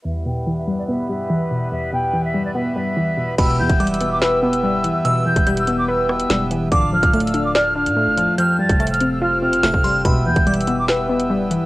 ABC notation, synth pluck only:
X:1
M:4/4
L:1/8
Q:1/4=144
K:Ephr
V:1 name="Synth pluck" clef=bass
E,, B,, E, G, B, G, E, B,, | E,, B,, E, G, B, G, E, B,, | B,, E, G, B, B B, G, E, | B,, E, G, B, B B, G, E, |
D, F, A, D d D A, F, | F, G, A, C F C A, G, | B,, E, G, B, B B, G, E, |]